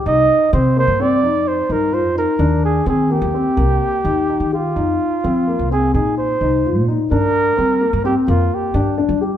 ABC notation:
X:1
M:5/4
L:1/16
Q:1/4=128
K:Fdor
V:1 name="Flugelhorn"
e4 c2 c2 d4 c2 B2 c2 B2- | B2 A2 A2 G12 F2- | F8 A2 A2 c6 z2 | B8 G2 F2 G4 z4 |]
V:2 name="Grand piano"
E4 C2 B,2 C2 E4 E2 F2 E2 | D4 C2 B,2 C2 B,4 E2 E2 G2 | E4 C2 B,2 C2 E4 E2 F2 E2 | D4 C2 B,2 C2 B,4 D2 D2 G2 |]
V:3 name="Upright bass" clef=bass
C,,2 z2 C,3 G,,3 F,,4 G,,3 F,,2 z | E,,4 E,3 E,,2 z C,,2 z2 E,,3 E,3 | F,,2 z2 F,3 C,,3 B,,4 C,,3 B,,2 z | G,,4 G,3 G,,2 z F,,2 z2 G,,3 G,3 |]